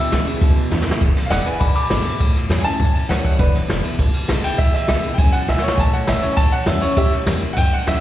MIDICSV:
0, 0, Header, 1, 7, 480
1, 0, Start_track
1, 0, Tempo, 297915
1, 1635, Time_signature, 4, 2, 24, 8
1, 12894, End_track
2, 0, Start_track
2, 0, Title_t, "Upright piano"
2, 0, Program_c, 0, 0
2, 0, Note_on_c, 0, 76, 123
2, 650, Note_off_c, 0, 76, 0
2, 2032, Note_on_c, 0, 77, 78
2, 2072, Note_off_c, 0, 77, 0
2, 2100, Note_on_c, 0, 74, 88
2, 2104, Note_on_c, 0, 78, 119
2, 2330, Note_off_c, 0, 74, 0
2, 2342, Note_off_c, 0, 78, 0
2, 2345, Note_on_c, 0, 71, 78
2, 2358, Note_on_c, 0, 80, 91
2, 2572, Note_off_c, 0, 71, 0
2, 2575, Note_on_c, 0, 83, 92
2, 2576, Note_on_c, 0, 74, 77
2, 2589, Note_off_c, 0, 80, 0
2, 2793, Note_off_c, 0, 83, 0
2, 2808, Note_off_c, 0, 74, 0
2, 2817, Note_on_c, 0, 83, 90
2, 2831, Note_on_c, 0, 86, 105
2, 3531, Note_off_c, 0, 86, 0
2, 3721, Note_off_c, 0, 83, 0
2, 4191, Note_on_c, 0, 80, 82
2, 4231, Note_off_c, 0, 80, 0
2, 4261, Note_on_c, 0, 81, 115
2, 4966, Note_off_c, 0, 81, 0
2, 4982, Note_on_c, 0, 78, 82
2, 5208, Note_off_c, 0, 78, 0
2, 5233, Note_on_c, 0, 78, 78
2, 5460, Note_on_c, 0, 62, 85
2, 5466, Note_off_c, 0, 78, 0
2, 5472, Note_on_c, 0, 71, 96
2, 5689, Note_off_c, 0, 62, 0
2, 5705, Note_off_c, 0, 71, 0
2, 7156, Note_on_c, 0, 79, 92
2, 7383, Note_on_c, 0, 76, 97
2, 7387, Note_off_c, 0, 79, 0
2, 7616, Note_off_c, 0, 76, 0
2, 7640, Note_on_c, 0, 76, 98
2, 7804, Note_on_c, 0, 75, 68
2, 7841, Note_off_c, 0, 75, 0
2, 7855, Note_off_c, 0, 76, 0
2, 7880, Note_on_c, 0, 76, 100
2, 8109, Note_off_c, 0, 76, 0
2, 8279, Note_on_c, 0, 79, 74
2, 8317, Note_off_c, 0, 79, 0
2, 8349, Note_on_c, 0, 80, 105
2, 8580, Note_on_c, 0, 78, 91
2, 8583, Note_off_c, 0, 80, 0
2, 8819, Note_off_c, 0, 78, 0
2, 8844, Note_on_c, 0, 76, 91
2, 9071, Note_off_c, 0, 76, 0
2, 9081, Note_on_c, 0, 73, 93
2, 9266, Note_on_c, 0, 80, 75
2, 9298, Note_off_c, 0, 80, 0
2, 9309, Note_off_c, 0, 73, 0
2, 9340, Note_on_c, 0, 81, 93
2, 9559, Note_off_c, 0, 81, 0
2, 9562, Note_on_c, 0, 78, 83
2, 9790, Note_off_c, 0, 78, 0
2, 9809, Note_on_c, 0, 76, 99
2, 10032, Note_on_c, 0, 73, 94
2, 10034, Note_off_c, 0, 76, 0
2, 10192, Note_on_c, 0, 80, 72
2, 10231, Note_off_c, 0, 80, 0
2, 10258, Note_on_c, 0, 81, 105
2, 10265, Note_off_c, 0, 73, 0
2, 10498, Note_off_c, 0, 81, 0
2, 10511, Note_on_c, 0, 78, 100
2, 10745, Note_off_c, 0, 78, 0
2, 10750, Note_on_c, 0, 76, 90
2, 10984, Note_off_c, 0, 76, 0
2, 10984, Note_on_c, 0, 73, 104
2, 11221, Note_off_c, 0, 73, 0
2, 11235, Note_on_c, 0, 67, 94
2, 11243, Note_on_c, 0, 76, 109
2, 11457, Note_off_c, 0, 67, 0
2, 11471, Note_off_c, 0, 76, 0
2, 12136, Note_on_c, 0, 78, 85
2, 12171, Note_off_c, 0, 78, 0
2, 12206, Note_on_c, 0, 79, 120
2, 12433, Note_off_c, 0, 79, 0
2, 12459, Note_on_c, 0, 78, 100
2, 12680, Note_off_c, 0, 78, 0
2, 12703, Note_on_c, 0, 76, 103
2, 12894, Note_off_c, 0, 76, 0
2, 12894, End_track
3, 0, Start_track
3, 0, Title_t, "Steel-string acoustic guitar"
3, 0, Program_c, 1, 25
3, 0, Note_on_c, 1, 40, 100
3, 179, Note_on_c, 1, 50, 87
3, 191, Note_on_c, 1, 56, 98
3, 201, Note_on_c, 1, 59, 89
3, 214, Note_on_c, 1, 64, 101
3, 395, Note_off_c, 1, 64, 0
3, 414, Note_on_c, 1, 64, 59
3, 418, Note_off_c, 1, 50, 0
3, 424, Note_off_c, 1, 56, 0
3, 425, Note_off_c, 1, 59, 0
3, 444, Note_on_c, 1, 59, 54
3, 630, Note_off_c, 1, 40, 0
3, 656, Note_off_c, 1, 64, 0
3, 668, Note_on_c, 1, 47, 97
3, 671, Note_off_c, 1, 59, 0
3, 1137, Note_on_c, 1, 50, 104
3, 1150, Note_on_c, 1, 56, 101
3, 1155, Note_on_c, 1, 59, 100
3, 1168, Note_on_c, 1, 64, 104
3, 1367, Note_off_c, 1, 64, 0
3, 1377, Note_off_c, 1, 50, 0
3, 1383, Note_off_c, 1, 56, 0
3, 1386, Note_off_c, 1, 59, 0
3, 1386, Note_on_c, 1, 64, 64
3, 1416, Note_on_c, 1, 59, 48
3, 1583, Note_off_c, 1, 47, 0
3, 1621, Note_off_c, 1, 64, 0
3, 1626, Note_on_c, 1, 40, 97
3, 1636, Note_off_c, 1, 59, 0
3, 2094, Note_on_c, 1, 50, 78
3, 2111, Note_on_c, 1, 56, 82
3, 2120, Note_on_c, 1, 59, 80
3, 2125, Note_on_c, 1, 64, 92
3, 2325, Note_off_c, 1, 64, 0
3, 2335, Note_off_c, 1, 50, 0
3, 2343, Note_off_c, 1, 56, 0
3, 2344, Note_on_c, 1, 64, 60
3, 2348, Note_off_c, 1, 59, 0
3, 2375, Note_on_c, 1, 59, 49
3, 2542, Note_off_c, 1, 40, 0
3, 2578, Note_on_c, 1, 47, 84
3, 2580, Note_off_c, 1, 64, 0
3, 2595, Note_off_c, 1, 59, 0
3, 3060, Note_on_c, 1, 50, 95
3, 3070, Note_on_c, 1, 56, 93
3, 3079, Note_on_c, 1, 59, 98
3, 3085, Note_on_c, 1, 64, 105
3, 3286, Note_off_c, 1, 64, 0
3, 3297, Note_off_c, 1, 50, 0
3, 3302, Note_off_c, 1, 56, 0
3, 3305, Note_on_c, 1, 64, 57
3, 3307, Note_off_c, 1, 59, 0
3, 3334, Note_on_c, 1, 59, 49
3, 3498, Note_off_c, 1, 47, 0
3, 3540, Note_off_c, 1, 64, 0
3, 3552, Note_on_c, 1, 45, 89
3, 3554, Note_off_c, 1, 59, 0
3, 4010, Note_on_c, 1, 52, 77
3, 4020, Note_on_c, 1, 55, 89
3, 4028, Note_on_c, 1, 61, 93
3, 4038, Note_on_c, 1, 64, 89
3, 4238, Note_off_c, 1, 64, 0
3, 4252, Note_off_c, 1, 52, 0
3, 4257, Note_off_c, 1, 55, 0
3, 4257, Note_on_c, 1, 64, 61
3, 4261, Note_off_c, 1, 61, 0
3, 4284, Note_on_c, 1, 61, 52
3, 4465, Note_off_c, 1, 45, 0
3, 4496, Note_off_c, 1, 64, 0
3, 4500, Note_on_c, 1, 40, 91
3, 4509, Note_off_c, 1, 61, 0
3, 4975, Note_on_c, 1, 52, 97
3, 4986, Note_on_c, 1, 55, 94
3, 4994, Note_on_c, 1, 61, 106
3, 5008, Note_on_c, 1, 64, 102
3, 5418, Note_off_c, 1, 40, 0
3, 5440, Note_off_c, 1, 52, 0
3, 5446, Note_off_c, 1, 55, 0
3, 5449, Note_off_c, 1, 61, 0
3, 5456, Note_off_c, 1, 64, 0
3, 5460, Note_on_c, 1, 40, 90
3, 5936, Note_on_c, 1, 50, 83
3, 5941, Note_on_c, 1, 56, 85
3, 5955, Note_on_c, 1, 59, 93
3, 5962, Note_on_c, 1, 64, 91
3, 6160, Note_off_c, 1, 64, 0
3, 6175, Note_off_c, 1, 50, 0
3, 6177, Note_off_c, 1, 56, 0
3, 6180, Note_on_c, 1, 64, 61
3, 6184, Note_off_c, 1, 59, 0
3, 6214, Note_on_c, 1, 59, 50
3, 6378, Note_off_c, 1, 40, 0
3, 6417, Note_off_c, 1, 64, 0
3, 6429, Note_on_c, 1, 47, 90
3, 6434, Note_off_c, 1, 59, 0
3, 6894, Note_on_c, 1, 50, 98
3, 6908, Note_on_c, 1, 56, 104
3, 6912, Note_on_c, 1, 59, 100
3, 6926, Note_on_c, 1, 64, 115
3, 7119, Note_off_c, 1, 64, 0
3, 7133, Note_off_c, 1, 50, 0
3, 7139, Note_on_c, 1, 64, 57
3, 7141, Note_off_c, 1, 56, 0
3, 7143, Note_off_c, 1, 59, 0
3, 7166, Note_on_c, 1, 59, 50
3, 7343, Note_off_c, 1, 47, 0
3, 7376, Note_off_c, 1, 64, 0
3, 7379, Note_on_c, 1, 40, 100
3, 7390, Note_off_c, 1, 59, 0
3, 7853, Note_on_c, 1, 50, 92
3, 7862, Note_on_c, 1, 56, 82
3, 7875, Note_on_c, 1, 59, 87
3, 7880, Note_on_c, 1, 64, 90
3, 8079, Note_off_c, 1, 64, 0
3, 8093, Note_off_c, 1, 50, 0
3, 8098, Note_off_c, 1, 56, 0
3, 8099, Note_on_c, 1, 64, 57
3, 8104, Note_off_c, 1, 59, 0
3, 8126, Note_on_c, 1, 59, 50
3, 8298, Note_off_c, 1, 40, 0
3, 8336, Note_off_c, 1, 64, 0
3, 8346, Note_on_c, 1, 42, 85
3, 8350, Note_off_c, 1, 59, 0
3, 8805, Note_off_c, 1, 42, 0
3, 8818, Note_on_c, 1, 44, 96
3, 9281, Note_off_c, 1, 44, 0
3, 9311, Note_on_c, 1, 45, 89
3, 9785, Note_on_c, 1, 52, 84
3, 9797, Note_on_c, 1, 55, 86
3, 9803, Note_on_c, 1, 61, 101
3, 9809, Note_on_c, 1, 64, 93
3, 10007, Note_off_c, 1, 64, 0
3, 10019, Note_off_c, 1, 52, 0
3, 10025, Note_off_c, 1, 55, 0
3, 10027, Note_on_c, 1, 64, 65
3, 10028, Note_off_c, 1, 61, 0
3, 10052, Note_on_c, 1, 61, 50
3, 10224, Note_off_c, 1, 45, 0
3, 10260, Note_off_c, 1, 64, 0
3, 10272, Note_off_c, 1, 61, 0
3, 10755, Note_on_c, 1, 52, 102
3, 10765, Note_on_c, 1, 55, 92
3, 10774, Note_on_c, 1, 61, 103
3, 10778, Note_on_c, 1, 64, 106
3, 10970, Note_off_c, 1, 64, 0
3, 10984, Note_off_c, 1, 52, 0
3, 10989, Note_off_c, 1, 55, 0
3, 10989, Note_on_c, 1, 64, 60
3, 10994, Note_off_c, 1, 61, 0
3, 11015, Note_on_c, 1, 61, 46
3, 11221, Note_off_c, 1, 64, 0
3, 11234, Note_off_c, 1, 61, 0
3, 11236, Note_on_c, 1, 45, 90
3, 11703, Note_on_c, 1, 52, 90
3, 11718, Note_on_c, 1, 55, 83
3, 11728, Note_on_c, 1, 60, 91
3, 11731, Note_on_c, 1, 64, 100
3, 11918, Note_off_c, 1, 64, 0
3, 11937, Note_on_c, 1, 64, 60
3, 11939, Note_off_c, 1, 52, 0
3, 11943, Note_off_c, 1, 60, 0
3, 11946, Note_off_c, 1, 55, 0
3, 11962, Note_on_c, 1, 60, 46
3, 12147, Note_off_c, 1, 45, 0
3, 12176, Note_off_c, 1, 64, 0
3, 12189, Note_off_c, 1, 60, 0
3, 12192, Note_on_c, 1, 43, 88
3, 12650, Note_off_c, 1, 43, 0
3, 12670, Note_on_c, 1, 42, 90
3, 12894, Note_off_c, 1, 42, 0
3, 12894, End_track
4, 0, Start_track
4, 0, Title_t, "Clean electric guitar"
4, 0, Program_c, 2, 27
4, 190, Note_on_c, 2, 40, 85
4, 200, Note_on_c, 2, 49, 98
4, 409, Note_off_c, 2, 40, 0
4, 415, Note_off_c, 2, 49, 0
4, 438, Note_on_c, 2, 40, 79
4, 443, Note_on_c, 2, 49, 86
4, 647, Note_off_c, 2, 40, 0
4, 656, Note_off_c, 2, 49, 0
4, 666, Note_on_c, 2, 40, 92
4, 674, Note_on_c, 2, 47, 109
4, 1103, Note_off_c, 2, 40, 0
4, 1107, Note_off_c, 2, 47, 0
4, 1150, Note_on_c, 2, 40, 90
4, 1155, Note_on_c, 2, 49, 91
4, 1369, Note_off_c, 2, 40, 0
4, 1371, Note_off_c, 2, 49, 0
4, 1393, Note_on_c, 2, 40, 75
4, 1399, Note_on_c, 2, 49, 91
4, 1610, Note_off_c, 2, 40, 0
4, 1613, Note_off_c, 2, 49, 0
4, 12894, End_track
5, 0, Start_track
5, 0, Title_t, "Upright bass"
5, 0, Program_c, 3, 32
5, 195, Note_on_c, 3, 35, 92
5, 355, Note_off_c, 3, 35, 0
5, 667, Note_on_c, 3, 37, 98
5, 829, Note_off_c, 3, 37, 0
5, 1145, Note_on_c, 3, 40, 93
5, 1307, Note_off_c, 3, 40, 0
5, 1636, Note_on_c, 3, 28, 100
5, 1795, Note_off_c, 3, 28, 0
5, 2099, Note_on_c, 3, 28, 87
5, 2264, Note_off_c, 3, 28, 0
5, 2590, Note_on_c, 3, 32, 96
5, 2751, Note_off_c, 3, 32, 0
5, 3063, Note_on_c, 3, 32, 91
5, 3226, Note_off_c, 3, 32, 0
5, 3553, Note_on_c, 3, 33, 98
5, 3713, Note_off_c, 3, 33, 0
5, 3794, Note_on_c, 3, 40, 93
5, 3953, Note_off_c, 3, 40, 0
5, 4017, Note_on_c, 3, 40, 89
5, 4182, Note_off_c, 3, 40, 0
5, 4506, Note_on_c, 3, 42, 97
5, 4668, Note_off_c, 3, 42, 0
5, 4988, Note_on_c, 3, 38, 93
5, 5149, Note_off_c, 3, 38, 0
5, 5467, Note_on_c, 3, 28, 100
5, 5628, Note_off_c, 3, 28, 0
5, 5966, Note_on_c, 3, 28, 91
5, 6121, Note_off_c, 3, 28, 0
5, 6427, Note_on_c, 3, 32, 95
5, 6588, Note_off_c, 3, 32, 0
5, 6922, Note_on_c, 3, 35, 89
5, 7078, Note_off_c, 3, 35, 0
5, 7392, Note_on_c, 3, 28, 100
5, 7551, Note_off_c, 3, 28, 0
5, 7652, Note_on_c, 3, 35, 99
5, 7805, Note_off_c, 3, 35, 0
5, 7879, Note_on_c, 3, 35, 93
5, 8036, Note_off_c, 3, 35, 0
5, 8350, Note_on_c, 3, 37, 96
5, 8510, Note_off_c, 3, 37, 0
5, 8834, Note_on_c, 3, 35, 88
5, 8993, Note_off_c, 3, 35, 0
5, 9308, Note_on_c, 3, 33, 104
5, 9469, Note_off_c, 3, 33, 0
5, 9794, Note_on_c, 3, 33, 93
5, 9953, Note_off_c, 3, 33, 0
5, 10273, Note_on_c, 3, 37, 93
5, 10432, Note_off_c, 3, 37, 0
5, 10746, Note_on_c, 3, 40, 93
5, 10908, Note_off_c, 3, 40, 0
5, 11227, Note_on_c, 3, 33, 105
5, 11388, Note_off_c, 3, 33, 0
5, 11464, Note_on_c, 3, 40, 98
5, 11627, Note_off_c, 3, 40, 0
5, 11705, Note_on_c, 3, 40, 87
5, 11867, Note_off_c, 3, 40, 0
5, 12190, Note_on_c, 3, 42, 89
5, 12350, Note_off_c, 3, 42, 0
5, 12680, Note_on_c, 3, 38, 93
5, 12838, Note_off_c, 3, 38, 0
5, 12894, End_track
6, 0, Start_track
6, 0, Title_t, "Muted upright bass strokes"
6, 420, Note_on_c, 9, 29, 76
6, 581, Note_off_c, 9, 29, 0
6, 908, Note_on_c, 9, 29, 75
6, 1070, Note_off_c, 9, 29, 0
6, 1382, Note_on_c, 9, 29, 78
6, 1543, Note_off_c, 9, 29, 0
6, 1866, Note_on_c, 9, 29, 74
6, 2027, Note_off_c, 9, 29, 0
6, 2348, Note_on_c, 9, 29, 69
6, 2509, Note_off_c, 9, 29, 0
6, 2816, Note_on_c, 9, 29, 76
6, 2977, Note_off_c, 9, 29, 0
6, 3302, Note_on_c, 9, 29, 74
6, 3463, Note_off_c, 9, 29, 0
6, 4268, Note_on_c, 9, 29, 77
6, 4429, Note_off_c, 9, 29, 0
6, 4753, Note_on_c, 9, 29, 72
6, 4914, Note_off_c, 9, 29, 0
6, 5227, Note_on_c, 9, 29, 74
6, 5388, Note_off_c, 9, 29, 0
6, 5713, Note_on_c, 9, 29, 79
6, 5875, Note_off_c, 9, 29, 0
6, 6199, Note_on_c, 9, 29, 77
6, 6360, Note_off_c, 9, 29, 0
6, 6686, Note_on_c, 9, 29, 74
6, 6847, Note_off_c, 9, 29, 0
6, 7177, Note_on_c, 9, 29, 76
6, 7339, Note_off_c, 9, 29, 0
6, 8114, Note_on_c, 9, 29, 73
6, 8275, Note_off_c, 9, 29, 0
6, 8602, Note_on_c, 9, 29, 72
6, 8763, Note_off_c, 9, 29, 0
6, 9077, Note_on_c, 9, 29, 72
6, 9239, Note_off_c, 9, 29, 0
6, 9554, Note_on_c, 9, 29, 72
6, 9715, Note_off_c, 9, 29, 0
6, 10028, Note_on_c, 9, 29, 71
6, 10189, Note_off_c, 9, 29, 0
6, 10505, Note_on_c, 9, 29, 70
6, 10667, Note_off_c, 9, 29, 0
6, 10999, Note_on_c, 9, 29, 72
6, 11160, Note_off_c, 9, 29, 0
6, 11953, Note_on_c, 9, 29, 72
6, 12114, Note_off_c, 9, 29, 0
6, 12441, Note_on_c, 9, 29, 72
6, 12602, Note_off_c, 9, 29, 0
6, 12894, End_track
7, 0, Start_track
7, 0, Title_t, "Drums"
7, 197, Note_on_c, 9, 38, 111
7, 197, Note_on_c, 9, 51, 84
7, 358, Note_off_c, 9, 38, 0
7, 358, Note_off_c, 9, 51, 0
7, 430, Note_on_c, 9, 51, 70
7, 591, Note_off_c, 9, 51, 0
7, 664, Note_on_c, 9, 51, 89
7, 668, Note_on_c, 9, 36, 126
7, 825, Note_off_c, 9, 51, 0
7, 830, Note_off_c, 9, 36, 0
7, 907, Note_on_c, 9, 51, 62
7, 1068, Note_off_c, 9, 51, 0
7, 1152, Note_on_c, 9, 38, 69
7, 1310, Note_off_c, 9, 38, 0
7, 1310, Note_on_c, 9, 38, 78
7, 1468, Note_off_c, 9, 38, 0
7, 1468, Note_on_c, 9, 38, 124
7, 1629, Note_off_c, 9, 38, 0
7, 1631, Note_on_c, 9, 36, 110
7, 1632, Note_on_c, 9, 51, 88
7, 1792, Note_off_c, 9, 36, 0
7, 1793, Note_off_c, 9, 51, 0
7, 1876, Note_on_c, 9, 38, 32
7, 1876, Note_on_c, 9, 51, 65
7, 2037, Note_off_c, 9, 38, 0
7, 2037, Note_off_c, 9, 51, 0
7, 2112, Note_on_c, 9, 38, 120
7, 2112, Note_on_c, 9, 51, 88
7, 2273, Note_off_c, 9, 38, 0
7, 2273, Note_off_c, 9, 51, 0
7, 2350, Note_on_c, 9, 51, 65
7, 2512, Note_off_c, 9, 51, 0
7, 2587, Note_on_c, 9, 51, 89
7, 2590, Note_on_c, 9, 36, 118
7, 2748, Note_off_c, 9, 51, 0
7, 2752, Note_off_c, 9, 36, 0
7, 2829, Note_on_c, 9, 51, 69
7, 2991, Note_off_c, 9, 51, 0
7, 3065, Note_on_c, 9, 38, 112
7, 3065, Note_on_c, 9, 51, 90
7, 3226, Note_off_c, 9, 38, 0
7, 3226, Note_off_c, 9, 51, 0
7, 3306, Note_on_c, 9, 51, 72
7, 3467, Note_off_c, 9, 51, 0
7, 3546, Note_on_c, 9, 51, 93
7, 3550, Note_on_c, 9, 36, 115
7, 3707, Note_off_c, 9, 51, 0
7, 3711, Note_off_c, 9, 36, 0
7, 3794, Note_on_c, 9, 38, 31
7, 3794, Note_on_c, 9, 51, 64
7, 3955, Note_off_c, 9, 38, 0
7, 3955, Note_off_c, 9, 51, 0
7, 4030, Note_on_c, 9, 38, 114
7, 4030, Note_on_c, 9, 51, 85
7, 4191, Note_off_c, 9, 38, 0
7, 4191, Note_off_c, 9, 51, 0
7, 4265, Note_on_c, 9, 51, 61
7, 4427, Note_off_c, 9, 51, 0
7, 4508, Note_on_c, 9, 36, 117
7, 4511, Note_on_c, 9, 51, 83
7, 4669, Note_off_c, 9, 36, 0
7, 4672, Note_off_c, 9, 51, 0
7, 4753, Note_on_c, 9, 51, 65
7, 4914, Note_off_c, 9, 51, 0
7, 4999, Note_on_c, 9, 38, 113
7, 4999, Note_on_c, 9, 51, 82
7, 5160, Note_off_c, 9, 38, 0
7, 5160, Note_off_c, 9, 51, 0
7, 5230, Note_on_c, 9, 36, 88
7, 5239, Note_on_c, 9, 51, 67
7, 5392, Note_off_c, 9, 36, 0
7, 5400, Note_off_c, 9, 51, 0
7, 5468, Note_on_c, 9, 36, 118
7, 5476, Note_on_c, 9, 51, 81
7, 5630, Note_off_c, 9, 36, 0
7, 5638, Note_off_c, 9, 51, 0
7, 5714, Note_on_c, 9, 38, 34
7, 5714, Note_on_c, 9, 51, 65
7, 5875, Note_off_c, 9, 38, 0
7, 5875, Note_off_c, 9, 51, 0
7, 5952, Note_on_c, 9, 38, 114
7, 5952, Note_on_c, 9, 51, 86
7, 6113, Note_off_c, 9, 38, 0
7, 6113, Note_off_c, 9, 51, 0
7, 6185, Note_on_c, 9, 51, 64
7, 6346, Note_off_c, 9, 51, 0
7, 6427, Note_on_c, 9, 36, 114
7, 6428, Note_on_c, 9, 51, 85
7, 6588, Note_off_c, 9, 36, 0
7, 6589, Note_off_c, 9, 51, 0
7, 6666, Note_on_c, 9, 51, 68
7, 6828, Note_off_c, 9, 51, 0
7, 6906, Note_on_c, 9, 38, 115
7, 6906, Note_on_c, 9, 51, 93
7, 7067, Note_off_c, 9, 38, 0
7, 7067, Note_off_c, 9, 51, 0
7, 7145, Note_on_c, 9, 51, 72
7, 7306, Note_off_c, 9, 51, 0
7, 7391, Note_on_c, 9, 36, 113
7, 7397, Note_on_c, 9, 51, 92
7, 7552, Note_off_c, 9, 36, 0
7, 7558, Note_off_c, 9, 51, 0
7, 7639, Note_on_c, 9, 38, 33
7, 7639, Note_on_c, 9, 51, 69
7, 7800, Note_off_c, 9, 38, 0
7, 7800, Note_off_c, 9, 51, 0
7, 7864, Note_on_c, 9, 38, 115
7, 7864, Note_on_c, 9, 51, 83
7, 8025, Note_off_c, 9, 38, 0
7, 8025, Note_off_c, 9, 51, 0
7, 8104, Note_on_c, 9, 51, 65
7, 8265, Note_off_c, 9, 51, 0
7, 8346, Note_on_c, 9, 51, 88
7, 8350, Note_on_c, 9, 36, 116
7, 8508, Note_off_c, 9, 51, 0
7, 8511, Note_off_c, 9, 36, 0
7, 8586, Note_on_c, 9, 51, 62
7, 8747, Note_off_c, 9, 51, 0
7, 8831, Note_on_c, 9, 38, 68
7, 8990, Note_off_c, 9, 38, 0
7, 8990, Note_on_c, 9, 38, 79
7, 9150, Note_off_c, 9, 38, 0
7, 9150, Note_on_c, 9, 38, 115
7, 9306, Note_on_c, 9, 51, 88
7, 9309, Note_on_c, 9, 36, 119
7, 9311, Note_off_c, 9, 38, 0
7, 9467, Note_off_c, 9, 51, 0
7, 9470, Note_off_c, 9, 36, 0
7, 9553, Note_on_c, 9, 51, 59
7, 9715, Note_off_c, 9, 51, 0
7, 9785, Note_on_c, 9, 38, 115
7, 9785, Note_on_c, 9, 51, 86
7, 9946, Note_off_c, 9, 38, 0
7, 9946, Note_off_c, 9, 51, 0
7, 10022, Note_on_c, 9, 51, 63
7, 10183, Note_off_c, 9, 51, 0
7, 10259, Note_on_c, 9, 51, 85
7, 10267, Note_on_c, 9, 36, 112
7, 10420, Note_off_c, 9, 51, 0
7, 10428, Note_off_c, 9, 36, 0
7, 10504, Note_on_c, 9, 51, 63
7, 10665, Note_off_c, 9, 51, 0
7, 10733, Note_on_c, 9, 38, 114
7, 10733, Note_on_c, 9, 51, 83
7, 10894, Note_off_c, 9, 38, 0
7, 10894, Note_off_c, 9, 51, 0
7, 10985, Note_on_c, 9, 51, 70
7, 11146, Note_off_c, 9, 51, 0
7, 11219, Note_on_c, 9, 51, 91
7, 11229, Note_on_c, 9, 36, 111
7, 11380, Note_off_c, 9, 51, 0
7, 11390, Note_off_c, 9, 36, 0
7, 11471, Note_on_c, 9, 38, 32
7, 11471, Note_on_c, 9, 51, 66
7, 11632, Note_off_c, 9, 38, 0
7, 11632, Note_off_c, 9, 51, 0
7, 11705, Note_on_c, 9, 38, 113
7, 11705, Note_on_c, 9, 51, 88
7, 11866, Note_off_c, 9, 38, 0
7, 11866, Note_off_c, 9, 51, 0
7, 11952, Note_on_c, 9, 51, 64
7, 12113, Note_off_c, 9, 51, 0
7, 12187, Note_on_c, 9, 51, 87
7, 12193, Note_on_c, 9, 36, 113
7, 12348, Note_off_c, 9, 51, 0
7, 12354, Note_off_c, 9, 36, 0
7, 12436, Note_on_c, 9, 51, 67
7, 12597, Note_off_c, 9, 51, 0
7, 12682, Note_on_c, 9, 38, 109
7, 12682, Note_on_c, 9, 51, 81
7, 12843, Note_off_c, 9, 38, 0
7, 12843, Note_off_c, 9, 51, 0
7, 12894, End_track
0, 0, End_of_file